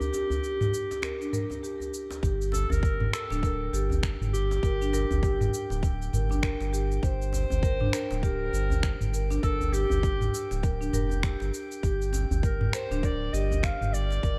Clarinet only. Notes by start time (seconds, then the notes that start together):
Already playing: G4
2.53 A4
2.71 A#4
3.13 A4
4.33 G4
7.03 C5
8.17 C5
8.22 A#4
9.43 A4
9.73 G4
12.44 A#4
12.74 C5
13.05 D5
13.33 D#5
13.64 F5
13.94 D5